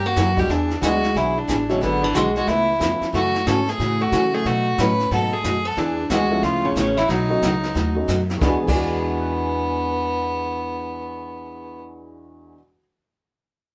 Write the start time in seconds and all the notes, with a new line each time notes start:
Already playing: G2
0.06 A#3 F#4
0.16 F#2 E3 A#3 C#4 G4 A#4, kick, snare, hi-hat pedal
0.37 F#3 G3 G#3 B3 D4 F#4 G4, kick, snare
0.48 E2 E3 B3 D4 G#4, brush sweep, kick, snare
0.70 snare
0.82 D2 E3 F#3 G#3 B3 D4 E4 F#4 G#4, kick, snare, hi-hat pedal
1.03 snare
1.14 B1 E3 F#3 B3 D4 E4 G#4, brush sweep, kick, snare
1.38 E3 D4
1.48 A1 E3 B3 D4 G#4, kick, snare, hi-hat pedal
1.69 D3 F#3 G#3 B3 C#4 D4 E4, snare
1.81 G#1 D3 F#3 B3 F#4 G#4, brush sweep, kick, snare
2.03 E3 D4
2.13 B1 D3 F#3 G#3 B3 F#4 G#4, kick, snare, hi-hat pedal
2.35 G#3 F#4, snare
2.46 C#2 C#3 E3 A3 B3 E4 F4 B4, brush sweep, kick, snare
2.79 F2 C#3 F3 A3 B3 C#4 E4 F4 B4, kick, snare, hi-hat pedal
3.01 muted upright bass stroke, snare
3.13 F#2 C#3 E3 A3 C#4 F#4, brush sweep, kick, snare
3.35 snare
3.46 G#2 C#3 E3 A3 C#4 F#4 A4, kick, snare, hi-hat pedal
3.67 A3 G#4, snare
3.79 A2 C#3 E3 A3 C#4 F#4, brush sweep, kick, snare
4.01 A3 F#4
4.12 C#3 E3 F#3 A3 C#4 E4 F#4, kick, snare, hi-hat pedal
4.34 A3 G#4
4.45 B2 F#3 A3 D#4 F#4, brush sweep, kick, snare
4.78 A2 B2 F#3 A3 C#4 D#4 F#4 B4, kick, snare, hi-hat pedal
4.99 snare
5.11 G#2 B2 F#3 A3 B3 D#4 F#4 A4, brush sweep, kick, snare
5.33 A3 G#4
5.44 F#2 B2 F#3 A3 D#4 F#4, kick, snare, hi-hat pedal
5.65 B3 A4
5.77 E2 E3 B3 D4 G#4, brush sweep, kick, snare
6.10 D2 E3 G#3 B3 D4 F#4 G#4, kick, snare, hi-hat pedal
6.31 F3 A3 B3 C#4 E4
6.43 C#2 C#3 F3 A3 B3 F4 B4, brush sweep, kick, snare
6.65 C#3 C#4
6.75 A1 C#3 A3 B3 C#4 F4 B4, kick, snare, hi-hat pedal
6.97 E3 E4, snare
7.08 B1 B2 F#3 A3 D#4 F#4, brush sweep, kick, snare
7.29 F#3 A3 B3 C#4 D#4
7.42 C#2 B2 F#3 A3 D#4 F#4, kick, snare, hi-hat pedal
7.63 snare
7.74 D#2 B2 F#3 A3 D#4 F#4, brush sweep, kick, snare
7.95 F#3 A3 B3 C#4 D#4
8.08 F#2 B2 F#3 A3 D#4 F#4, kick, snare, hi-hat pedal
8.29 snare
8.36 E2 E3
8.41 E2 E3 G#3 B3 D4 G#4, kick, snare
8.45 D4 F#4
8.63 E2 E3
8.67 E2 E3 G#3 B3 D4 G#4, kick, crash
8.72 D4 F#4 B4
8.82 D5
8.91 F#5
9.00 B5
9.09 D6
9.20 F#6
9.32 B6